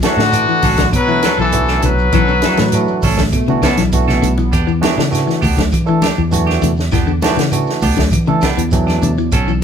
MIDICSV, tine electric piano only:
0, 0, Header, 1, 2, 480
1, 0, Start_track
1, 0, Tempo, 600000
1, 1703, Time_signature, 4, 2, 24, 8
1, 7709, End_track
2, 0, Start_track
2, 0, Title_t, "Tine electric piano"
2, 0, Program_c, 0, 4
2, 21, Note_on_c, 0, 52, 84
2, 26, Note_on_c, 0, 62, 74
2, 29, Note_on_c, 0, 57, 78
2, 33, Note_on_c, 0, 66, 86
2, 125, Note_off_c, 0, 52, 0
2, 128, Note_off_c, 0, 62, 0
2, 129, Note_off_c, 0, 57, 0
2, 131, Note_off_c, 0, 66, 0
2, 265, Note_on_c, 0, 52, 69
2, 270, Note_on_c, 0, 57, 61
2, 270, Note_on_c, 0, 62, 60
2, 272, Note_on_c, 0, 66, 74
2, 519, Note_off_c, 0, 52, 0
2, 521, Note_off_c, 0, 57, 0
2, 521, Note_off_c, 0, 62, 0
2, 522, Note_off_c, 0, 66, 0
2, 851, Note_on_c, 0, 52, 68
2, 854, Note_on_c, 0, 57, 67
2, 861, Note_on_c, 0, 62, 64
2, 862, Note_on_c, 0, 64, 80
2, 1009, Note_off_c, 0, 52, 0
2, 1011, Note_off_c, 0, 57, 0
2, 1015, Note_off_c, 0, 62, 0
2, 1015, Note_off_c, 0, 64, 0
2, 1216, Note_on_c, 0, 52, 75
2, 1217, Note_on_c, 0, 57, 70
2, 1220, Note_on_c, 0, 62, 69
2, 1229, Note_on_c, 0, 66, 77
2, 1526, Note_off_c, 0, 52, 0
2, 1526, Note_off_c, 0, 57, 0
2, 1528, Note_off_c, 0, 62, 0
2, 1532, Note_off_c, 0, 66, 0
2, 1945, Note_on_c, 0, 57, 68
2, 1947, Note_on_c, 0, 52, 83
2, 1950, Note_on_c, 0, 66, 83
2, 1951, Note_on_c, 0, 62, 74
2, 2047, Note_off_c, 0, 57, 0
2, 2048, Note_off_c, 0, 52, 0
2, 2049, Note_off_c, 0, 66, 0
2, 2050, Note_off_c, 0, 62, 0
2, 2186, Note_on_c, 0, 52, 76
2, 2187, Note_on_c, 0, 57, 80
2, 2194, Note_on_c, 0, 66, 93
2, 2196, Note_on_c, 0, 62, 79
2, 2439, Note_off_c, 0, 52, 0
2, 2440, Note_off_c, 0, 57, 0
2, 2444, Note_off_c, 0, 62, 0
2, 2444, Note_off_c, 0, 66, 0
2, 2785, Note_on_c, 0, 52, 84
2, 2790, Note_on_c, 0, 57, 75
2, 2793, Note_on_c, 0, 62, 84
2, 2798, Note_on_c, 0, 66, 102
2, 2937, Note_off_c, 0, 52, 0
2, 2940, Note_off_c, 0, 57, 0
2, 2941, Note_off_c, 0, 62, 0
2, 2943, Note_off_c, 0, 66, 0
2, 3144, Note_on_c, 0, 52, 82
2, 3144, Note_on_c, 0, 62, 78
2, 3148, Note_on_c, 0, 57, 78
2, 3151, Note_on_c, 0, 66, 101
2, 3450, Note_off_c, 0, 52, 0
2, 3450, Note_off_c, 0, 62, 0
2, 3452, Note_off_c, 0, 57, 0
2, 3454, Note_off_c, 0, 66, 0
2, 3850, Note_on_c, 0, 62, 82
2, 3851, Note_on_c, 0, 52, 94
2, 3854, Note_on_c, 0, 57, 86
2, 3855, Note_on_c, 0, 66, 101
2, 3960, Note_off_c, 0, 52, 0
2, 3960, Note_off_c, 0, 62, 0
2, 3962, Note_off_c, 0, 57, 0
2, 3963, Note_off_c, 0, 66, 0
2, 4086, Note_on_c, 0, 52, 78
2, 4086, Note_on_c, 0, 57, 71
2, 4091, Note_on_c, 0, 62, 77
2, 4093, Note_on_c, 0, 66, 88
2, 4350, Note_off_c, 0, 52, 0
2, 4350, Note_off_c, 0, 57, 0
2, 4352, Note_off_c, 0, 62, 0
2, 4354, Note_off_c, 0, 66, 0
2, 4683, Note_on_c, 0, 52, 82
2, 4689, Note_on_c, 0, 62, 78
2, 4690, Note_on_c, 0, 57, 83
2, 4692, Note_on_c, 0, 69, 99
2, 4846, Note_off_c, 0, 52, 0
2, 4849, Note_off_c, 0, 62, 0
2, 4850, Note_off_c, 0, 57, 0
2, 4851, Note_off_c, 0, 69, 0
2, 5050, Note_on_c, 0, 52, 89
2, 5054, Note_on_c, 0, 57, 87
2, 5055, Note_on_c, 0, 62, 79
2, 5061, Note_on_c, 0, 66, 95
2, 5363, Note_off_c, 0, 52, 0
2, 5366, Note_off_c, 0, 57, 0
2, 5366, Note_off_c, 0, 62, 0
2, 5369, Note_off_c, 0, 66, 0
2, 5777, Note_on_c, 0, 57, 86
2, 5778, Note_on_c, 0, 52, 97
2, 5786, Note_on_c, 0, 66, 103
2, 5788, Note_on_c, 0, 62, 89
2, 5884, Note_off_c, 0, 52, 0
2, 5884, Note_off_c, 0, 57, 0
2, 5888, Note_off_c, 0, 66, 0
2, 5889, Note_off_c, 0, 62, 0
2, 6011, Note_on_c, 0, 52, 80
2, 6014, Note_on_c, 0, 57, 74
2, 6019, Note_on_c, 0, 62, 78
2, 6020, Note_on_c, 0, 66, 87
2, 6273, Note_off_c, 0, 52, 0
2, 6274, Note_off_c, 0, 57, 0
2, 6277, Note_off_c, 0, 62, 0
2, 6277, Note_off_c, 0, 66, 0
2, 6618, Note_on_c, 0, 52, 89
2, 6618, Note_on_c, 0, 57, 84
2, 6621, Note_on_c, 0, 62, 79
2, 6627, Note_on_c, 0, 69, 101
2, 6774, Note_off_c, 0, 52, 0
2, 6774, Note_off_c, 0, 57, 0
2, 6775, Note_off_c, 0, 62, 0
2, 6779, Note_off_c, 0, 69, 0
2, 6976, Note_on_c, 0, 52, 88
2, 6978, Note_on_c, 0, 62, 85
2, 6980, Note_on_c, 0, 57, 81
2, 6983, Note_on_c, 0, 79, 74
2, 6985, Note_on_c, 0, 54, 98
2, 7207, Note_off_c, 0, 79, 0
2, 7217, Note_on_c, 0, 74, 66
2, 7287, Note_off_c, 0, 52, 0
2, 7288, Note_off_c, 0, 62, 0
2, 7289, Note_off_c, 0, 57, 0
2, 7291, Note_off_c, 0, 54, 0
2, 7444, Note_off_c, 0, 74, 0
2, 7709, End_track
0, 0, End_of_file